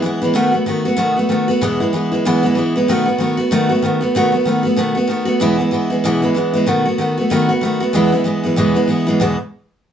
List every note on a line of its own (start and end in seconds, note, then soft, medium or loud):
0.02 0.22 E3 medium
0.02 0.22 G#3 medium
0.02 0.21 B3 medium
0.02 0.20 E4 medium
0.22 0.34 E3 medium
0.22 0.35 G#3 medium
0.22 0.34 B3 medium
0.22 0.35 E4 medium
0.34 0.53 B2 loud
0.34 0.54 D#3 medium
0.34 0.54 A3 loud
0.34 0.53 B3 loud
0.34 0.51 F#4 loud
0.52 0.66 A3 soft
0.52 0.67 B3 medium
0.52 0.66 F#4 medium
0.66 0.85 D#3 medium
0.66 0.86 A3 medium
0.66 0.85 B3 medium
0.66 0.84 F#4 medium
0.85 0.96 A3 medium
0.85 0.97 B3 medium
0.85 0.98 F#4 medium
0.96 1.16 B2 medium
0.96 1.17 D#3 medium
0.96 1.17 A3 medium
0.96 1.16 B3 medium
0.96 1.15 F#4 loud
1.16 1.28 A3 medium
1.16 1.30 B3 medium
1.16 1.30 F#4 medium
1.29 1.48 D#3 medium
1.29 1.49 A3 medium
1.29 1.48 B3 medium
1.29 1.47 F#4 medium
1.48 1.62 A3 medium
1.48 1.62 B3 medium
1.48 1.61 F#4 medium
1.61 1.80 E2 medium
1.61 1.80 B2 medium
1.61 1.81 E3 loud
1.61 1.81 G#3 medium
1.61 1.80 B3 medium
1.61 1.79 E4 medium
1.80 1.92 E3 medium
1.80 1.93 G#3 medium
1.80 1.94 B3 soft
1.80 1.93 E4 medium
1.93 2.12 E3 medium
1.93 2.13 G#3 medium
1.93 2.12 B3 medium
1.93 2.10 E4 medium
2.12 2.25 E3 soft
2.12 2.25 G#3 medium
2.12 2.26 B3 medium
2.12 2.25 E4 medium
2.25 2.44 E2 medium
2.25 2.44 B2 medium
2.25 2.45 E3 medium
2.25 2.44 G#3 medium
2.25 2.43 B3 loud
2.25 2.42 E4 loud
2.43 2.54 E3 medium
2.43 2.56 G#3 medium
2.43 2.57 B3 medium
2.43 2.56 E4 medium
2.55 2.75 E3 medium
2.55 2.76 G#3 medium
2.55 2.76 B3 medium
2.55 2.74 E4 medium
2.76 2.89 E3 medium
2.76 2.89 G#3 medium
2.76 2.88 B3 medium
2.76 2.89 E4 medium
2.88 3.07 B2 medium
2.88 3.08 D#3 loud
2.88 3.08 A3 loud
2.88 3.07 B3 medium
2.88 3.04 F#4 loud
3.05 3.19 A3 medium
3.05 3.19 B3 medium
3.05 3.19 F#4 medium
3.18 3.38 D#3 medium
3.18 3.39 A3 medium
3.18 3.38 B3 medium
3.18 3.36 F#4 medium
3.37 3.51 A3 medium
3.37 3.51 B3 medium
3.37 3.51 F#4 medium
3.51 3.70 B2 medium
3.51 3.71 D#3 loud
3.51 3.71 A3 medium
3.51 3.70 B3 loud
3.51 3.68 F#4 loud
3.69 3.82 A3 medium
3.69 3.83 B3 medium
3.69 3.83 F#4 medium
3.82 4.02 D#3 medium
3.82 4.02 A3 medium
3.82 4.01 B3 medium
3.82 4.00 F#4 medium
4.01 4.15 A3 medium
4.01 4.15 B3 medium
4.01 4.14 F#4 medium
4.15 4.34 B2 medium
4.15 4.34 D#3 medium
4.15 4.34 A3 medium
4.15 4.33 B3 loud
4.15 4.31 F#4 loud
4.32 4.46 A3 soft
4.32 4.47 B3 medium
4.32 4.46 F#4 medium
4.45 4.65 D#3 medium
4.45 4.66 A3 medium
4.45 4.64 B3 medium
4.45 4.62 F#4 medium
4.63 4.77 A3 medium
4.63 4.77 B3 medium
4.63 4.77 F#4 medium
4.76 4.96 B2 medium
4.76 4.97 D#3 medium
4.76 4.97 A3 medium
4.76 4.96 B3 medium
4.76 4.94 F#4 medium
4.95 5.08 A3 medium
4.95 5.09 B3 medium
4.95 5.09 F#4 medium
5.07 5.28 D#3 medium
5.07 5.28 A3 medium
5.07 5.26 B3 medium
5.07 5.24 F#4 medium
5.25 5.41 A3 medium
5.25 5.40 B3 medium
5.25 5.40 F#4 medium
5.40 5.60 E2 medium
5.40 5.60 B2 medium
5.40 5.60 E3 medium
5.40 5.59 G#3 medium
5.40 5.58 B3 loud
5.40 5.56 E4 loud
5.58 5.70 E3 soft
5.58 5.71 G#3 medium
5.58 5.72 B3 medium
5.58 5.72 E4 medium
5.71 5.91 E3 medium
5.71 5.91 G#3 medium
5.71 5.90 B3 medium
5.71 5.89 E4 medium
5.90 6.04 E3 soft
5.90 6.04 G#3 medium
5.90 6.05 B3 medium
5.90 6.04 E4 medium
6.04 6.23 E2 medium
6.04 6.24 B2 loud
6.04 6.24 E3 medium
6.04 6.23 G#3 loud
6.04 6.22 B3 loud
6.04 6.21 E4 medium
6.22 6.33 E3 medium
6.22 6.35 G#3 medium
6.22 6.36 B3 medium
6.22 6.36 E4 medium
6.35 6.54 E3 medium
6.35 6.55 G#3 medium
6.35 6.54 B3 medium
6.35 6.52 E4 medium
6.54 6.67 E3 medium
6.54 6.67 G#3 medium
6.54 6.67 B3 medium
6.54 6.67 E4 medium
6.66 6.86 B2 medium
6.66 6.86 D#3 medium
6.66 6.87 A3 medium
6.66 6.86 B3 medium
6.66 6.84 F#4 medium
6.85 6.98 A3 soft
6.85 7.00 B3 soft
6.85 6.99 F#4 medium
6.98 7.18 D#3 medium
6.98 7.18 A3 medium
6.98 7.18 B3 medium
6.98 7.16 F#4 medium
7.18 7.30 A3 soft
7.18 7.31 B3 medium
7.18 7.31 F#4 medium
7.30 7.50 B2 medium
7.30 7.50 D#3 loud
7.30 7.50 A3 loud
7.30 7.49 B3 loud
7.30 7.48 F#4 loud
7.49 7.62 A3 soft
7.49 7.62 B3 medium
7.49 7.62 F#4 medium
7.61 7.81 D#3 medium
7.61 7.82 A3 medium
7.61 7.81 B3 medium
7.61 7.79 F#4 medium
7.80 7.94 A3 medium
7.80 7.94 B3 medium
7.80 7.94 F#4 medium
7.93 8.13 E2 medium
7.93 8.13 B2 medium
7.93 8.13 E3 medium
7.93 8.13 G#3 loud
7.93 8.12 B3 loud
7.93 8.11 E4 medium
8.12 8.23 E3 soft
8.12 8.24 G#3 soft
8.12 8.25 B3 medium
8.12 8.26 E4 medium
8.24 8.44 E3 medium
8.24 8.45 G#3 medium
8.24 8.43 B3 medium
8.24 8.42 E4 medium
8.44 8.56 E3 medium
8.44 8.57 G#3 medium
8.44 8.57 B3 medium
8.44 8.57 E4 medium
8.56 8.76 E2 medium
8.56 8.76 B2 medium
8.56 8.76 E3 medium
8.56 8.75 G#3 medium
8.56 8.74 B3 loud
8.56 8.73 E4 loud
8.74 8.86 E3 medium
8.74 8.88 G#3 medium
8.74 8.88 B3 medium
8.74 8.88 E4 medium
8.88 9.07 E3 medium
8.88 9.07 G#3 medium
8.88 9.07 B3 medium
8.88 9.05 E4 medium
9.07 9.20 E3 medium
9.07 9.20 G#3 medium
9.07 9.20 B3 medium
9.07 9.20 E4 medium
9.20 9.36 E2 medium
9.20 9.36 B2 medium
9.20 9.36 E3 medium
9.20 9.36 G#3 medium
9.20 9.36 B3 medium
9.20 9.37 E4 loud